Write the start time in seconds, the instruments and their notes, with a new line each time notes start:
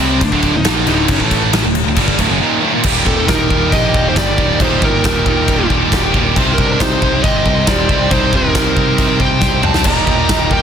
Already playing: lead electric guitar C4
0.00 picked electric bass C2, distorted electric guitar C3 G3 C4
0.21 distorted electric guitar D2 A2, lead electric guitar D4, kick, crash
0.32 picked electric bass D1, distorted electric guitar D2 A2 D3, kick
0.42 kick, crash
0.54 picked electric bass D1, distorted electric guitar D2 A2, lead electric guitar D#4
0.64 picked electric bass A#1, distorted electric guitar A#2 F3 A#3, snare, crash
0.85 picked electric bass D1, distorted electric guitar D2 A2 D3, lead electric guitar D#4, crash
1.08 picked electric bass F#1, distorted electric guitar F#2 C#3, kick, crash
1.19 picked electric bass A1, distorted electric guitar A2 E3 A3, kick
1.25 distorted electric guitar A3
1.31 kick, crash
1.53 snare, crash
1.62 picked electric bass D1, distorted electric guitar D2 A2
1.67 distorted electric guitar A2
1.75 crash
1.84 picked electric bass D1, distorted electric guitar D2 A2
1.88 distorted electric guitar D2 A2
1.95 picked electric bass G1, distorted electric guitar G2 D3 G3, kick, crash
2.08 kick
2.17 picked electric bass D1, distorted electric guitar D2 A2, kick, crash
2.29 picked electric bass F#1, distorted electric guitar F#2 C#3
2.40 distorted electric guitar D#2 A#2 D#3
2.62 distorted electric guitar D2 A2
2.73 distorted electric guitar D#2 A#2
2.82 picked electric bass D#1, distorted electric guitar D#2 G3 G4, overdriven electric guitar D#2 A#2 D#3, kick, crash, china
2.86 distorted electric guitar A#2 D#3 G3
2.90 distorted electric guitar G4
2.98 distorted electric guitar G3 G4
3.04 picked electric bass D#1, distorted electric guitar G3 G4, lead electric guitar C4 A4, kick
3.12 distorted electric guitar G3 G4
3.19 distorted electric guitar G3 G4
3.27 picked electric bass D#1, distorted electric guitar G3 G4, lead electric guitar D#4 A#4, kick, snare, china
3.34 distorted electric guitar G3 G4
3.42 distorted electric guitar G3 G4
3.50 picked electric bass D#1, overdriven electric guitar D#2 A#2 D#3, distorted electric guitar G3 G4, kick
3.58 distorted electric guitar G3 G4
3.65 distorted electric guitar G3 G4
3.72 picked electric bass A#1, distorted electric guitar G3 G4, lead electric guitar G4 D#5, kick, china
3.82 distorted electric guitar G3 G4
3.89 distorted electric guitar G3 G4
3.94 picked electric bass D#1, distorted electric guitar G3 G4, kick
4.03 distorted electric guitar G3 G4
4.09 distorted electric guitar G3, lead electric guitar D#4 C5
4.13 picked electric bass G1, overdriven electric guitar D#2 A#2, distorted electric guitar G4, kick, snare, china
4.18 overdriven electric guitar D#3, distorted electric guitar G3 G4, lead electric guitar G4 D5
4.27 distorted electric guitar G3 G4
4.34 picked electric bass D#1, distorted electric guitar D#3 G3 G4, kick
4.39 distorted electric guitar D#2 A#2 G3
4.44 distorted electric guitar G4
4.50 distorted electric guitar G3 G4
4.59 picked electric bass D#1, overdriven electric guitar D#2 A#2 D#3, distorted electric guitar D#2 G3 G4, lead electric guitar D#4 C5, kick, china
4.63 distorted electric guitar A#2 D#3 G3
4.68 distorted electric guitar G4
4.74 distorted electric guitar G3 G4
4.81 picked electric bass G1, distorted electric guitar G3 G4, lead electric guitar D#4 A#4, kick
4.88 distorted electric guitar G3 G4
4.97 distorted electric guitar G3 G4
5.04 picked electric bass D#1, distorted electric guitar G3 G4, kick, snare, china
5.12 distorted electric guitar G3 G4
5.20 distorted electric guitar G3 G4
5.26 picked electric bass D#1, overdriven electric guitar D#2 A#2 D#3, distorted electric guitar G3 G4, kick
5.35 distorted electric guitar G3 G4
5.43 distorted electric guitar G3 G4
5.48 picked electric bass D#1, distorted electric guitar G3 G4, kick, china
5.58 distorted electric guitar G3 G4
5.66 distorted electric guitar G3 G4
5.70 picked electric bass D#1, distorted electric guitar G3 G4, kick
5.82 distorted electric guitar G3 G4
5.89 overdriven electric guitar D#2 A#2, distorted electric guitar G3 G4, kick, china
5.93 picked electric bass D#1, overdriven electric guitar D#3, distorted electric guitar G3, snare
5.97 distorted electric guitar G4
6.04 distorted electric guitar G3 G4
6.10 distorted electric guitar D#3 G3 G4, kick
6.15 picked electric bass D1, distorted electric guitar D#2 A#2 G3
6.20 distorted electric guitar G4
6.26 distorted electric guitar G3 G4
6.36 picked electric bass C2, distorted electric guitar C3 G3 C4 G4 C5, overdriven electric guitar C3 G3 C4 D#4, kick, china
6.44 distorted electric guitar G4 C5
6.51 distorted electric guitar G4 C5, lead electric guitar A#4
6.58 picked electric bass C2, lead electric guitar D4, distorted electric guitar G4 C5, kick
6.67 distorted electric guitar G4 C5
6.73 lead electric guitar D4 A#4, distorted electric guitar G4
6.77 lead electric guitar D#4 C5, distorted electric guitar C5, kick, china
6.81 picked electric bass C2, distorted electric guitar G4 C5, snare
6.90 distorted electric guitar G4 C5
6.97 distorted electric guitar G4 C5
7.02 picked electric bass C2, overdriven electric guitar C3 G3 C4 D#4, distorted electric guitar G4, kick
7.09 distorted electric guitar G4 C5
7.16 distorted electric guitar G4 C5
7.23 picked electric bass G1, lead electric guitar G4 D#5, distorted electric guitar G4 C5, kick, china
7.31 distorted electric guitar G4 C5
7.39 distorted electric guitar G4 C5
7.46 picked electric bass C2, distorted electric guitar C5, kick
7.50 distorted electric guitar G4
7.55 distorted electric guitar G4 C5
7.63 overdriven electric guitar C3, distorted electric guitar G4 C5, lead electric guitar G4, china
7.67 picked electric bass D#1, overdriven electric guitar G3 C4 D#4, distorted electric guitar C5, lead electric guitar D5, kick, snare
7.72 distorted electric guitar G4
7.80 distorted electric guitar G4 C5
7.87 picked electric bass C2, distorted electric guitar G3 C4 G4 C5, kick
7.92 distorted electric guitar C3 G4 C5
8.02 distorted electric guitar G4 C5
8.10 picked electric bass C2, distorted electric guitar C3 G3 C4 G4 C5, overdriven electric guitar C3 G3 C4 D#4, lead electric guitar D#4 C5, kick, china
8.19 distorted electric guitar G4 C5
8.26 distorted electric guitar G4 C5
8.33 picked electric bass D#1, lead electric guitar D#4 A#4, distorted electric guitar G4 C5, kick
8.42 distorted electric guitar G4 C5
8.49 distorted electric guitar G4 C5
8.55 picked electric bass C2, distorted electric guitar G4 C5, kick, snare, china
8.63 distorted electric guitar G4 C5
8.72 distorted electric guitar G4 C5
8.77 picked electric bass C2, overdriven electric guitar C3 G3 C4 D#4, distorted electric guitar G4 C5, kick
8.86 distorted electric guitar G4 C5
8.94 distorted electric guitar G4 C5
8.98 picked electric bass C2, kick, china
9.03 distorted electric guitar G4 C5
9.10 distorted electric guitar G4 C5
9.17 picked electric bass C2, distorted electric guitar G4 C5, lead electric guitar C5, kick
9.21 distorted electric guitar G4 C5, lead electric guitar G5
9.31 distorted electric guitar G4 C5
9.39 picked electric bass C2, overdriven electric guitar C3 G3 C4 D#4, distorted electric guitar G4 C5, kick, snare
9.47 distorted electric guitar G4 C5
9.55 distorted electric guitar G4 C5
9.62 distorted electric guitar G3 C4 G4 C5, lead electric guitar C5 A5, mid tom
9.66 picked electric bass C2, distorted electric guitar C3 G4
9.72 distorted electric guitar C5, snare
9.77 distorted electric guitar G4 C5
9.84 picked electric bass D#1, distorted electric guitar D#2 A#2 D#3 G3 G4, overdriven electric guitar D#2 A#2 D#3, lead electric guitar D#5 A#5, kick, china, crash
9.91 distorted electric guitar G3 G4
10.00 distorted electric guitar G3 G4
10.07 picked electric bass D#1, distorted electric guitar G3 G4, kick
10.15 distorted electric guitar G3 G4
10.23 distorted electric guitar G3 G4
10.29 picked electric bass D#1, distorted electric guitar G3 G4, kick, snare, china
10.39 distorted electric guitar G3 G4
10.46 distorted electric guitar G3 G4
10.51 picked electric bass D#1, overdriven electric guitar D#2 A#2 D#3, distorted electric guitar G3 G4, lead electric guitar A#4 G5, kick